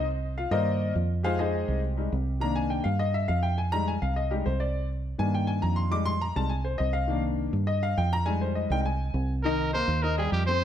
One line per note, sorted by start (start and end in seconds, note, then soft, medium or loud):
0.00 0.46 C2 medium
0.38 0.51 F4 medium
0.38 0.51 F5 medium
0.51 0.92 G2 medium
0.51 0.93 D#3 medium
0.51 0.93 A#3 medium
0.51 0.93 D#4 medium
0.51 0.93 A#4 medium
0.51 0.92 C5 medium
0.51 0.93 D5 medium
0.51 0.92 D#5 loud
0.95 1.63 F2 loud
1.23 1.96 G#3 medium
1.23 1.38 D#4 medium
1.23 1.39 F4 medium
1.23 2.37 G4 medium
1.23 1.39 G#4 medium
1.23 1.38 C5 medium
1.23 1.39 F5 loud
1.39 1.80 D#4 medium
1.39 1.80 G#4 medium
1.39 1.80 C5 medium
1.39 1.80 D#5 medium
1.68 2.09 C2 medium
1.97 2.10 G3 medium
1.97 2.11 G#3 soft
1.97 2.11 D#4 medium
2.12 2.80 C2 medium
2.40 2.83 D#3 medium
2.40 2.83 A#3 medium
2.40 2.83 D4 medium
2.40 2.56 A#5 loud
2.56 2.70 G#5 loud
2.70 2.85 G5 medium
2.84 3.26 G2 medium
2.84 2.99 F5 medium
2.99 3.14 D#5 medium
3.14 3.29 E5 medium
3.28 3.97 F2 medium
3.28 3.43 F5 medium
3.43 3.57 G5 medium
3.58 3.72 G#5 medium
3.72 3.92 G3 medium
3.72 3.92 G#3 medium
3.72 3.93 D#4 medium
3.72 3.87 A#5 loud
3.88 4.02 G#5 medium
4.02 4.43 C2 medium
4.02 4.16 F5 medium
4.16 4.31 D#5 medium
4.31 4.44 G3 medium
4.31 4.45 G#3 soft
4.31 4.45 D#4 medium
4.31 4.45 G4 medium
4.46 5.14 C2 medium
4.46 4.60 C5 medium
4.60 4.88 D5 medium
5.18 5.60 G2 medium
5.18 5.88 D#3 medium
5.18 5.89 A#3 soft
5.18 5.89 D4 medium
5.18 5.33 G#5 loud
5.34 5.48 G5 medium
5.47 5.62 G#5 medium
5.62 6.31 F2 medium
5.62 5.77 A#5 medium
5.76 5.91 C6 medium
5.91 6.11 G3 medium
5.91 6.11 G#3 medium
5.91 6.12 D#4 medium
5.91 6.06 D6 loud
6.05 6.21 C6 loud
6.21 6.36 A#5 medium
6.35 6.77 C2 medium
6.35 6.49 G3 soft
6.35 6.49 G#3 soft
6.35 6.50 D#4 medium
6.35 6.51 A5 loud
6.49 6.64 G#5 medium
6.65 6.79 C5 medium
6.78 7.48 C2 loud
6.78 6.93 D#5 medium
6.93 7.21 F5 medium
7.08 7.50 D#3 medium
7.08 7.51 A#3 medium
7.08 7.51 D4 medium
7.53 7.94 G2 loud
7.67 7.82 D#5 medium
7.83 7.97 F5 loud
7.98 8.66 F2 medium
7.98 8.12 G5 medium
8.13 8.27 A#5 loud
8.25 8.68 G3 medium
8.25 8.68 G#3 medium
8.25 8.69 D#4 medium
8.25 8.41 G#5 loud
8.41 8.56 C5 medium
8.55 8.70 D#5 medium
8.70 9.11 C2 medium
8.70 8.84 G3 medium
8.70 8.84 G#3 soft
8.70 8.85 D#4 medium
8.70 8.80 G5 loud
8.81 8.83 G5 medium
8.86 9.33 G#5 medium
9.14 9.82 C2 loud
9.43 9.69 D#3 medium
9.43 9.69 D#4 medium
9.43 9.71 A#4 loud
9.43 9.69 D#5 medium
9.73 9.98 A#3 medium
9.73 9.98 A#4 medium
9.73 10.04 C5 loud
9.73 9.98 A#5 medium
9.88 10.29 D#2 loud
10.02 10.15 D#4 medium
10.02 10.17 A#4 loud
10.02 10.15 D#5 medium
10.02 10.16 D#6 medium
10.18 10.42 G3 medium
10.18 10.42 G4 medium
10.18 10.31 G#4 medium
10.18 10.42 G5 medium
10.32 10.64 F2 medium
10.32 10.46 G4 medium
10.46 10.64 C4 medium
10.46 10.64 C5 loud
10.46 10.64 C5 medium
10.46 10.64 C6 medium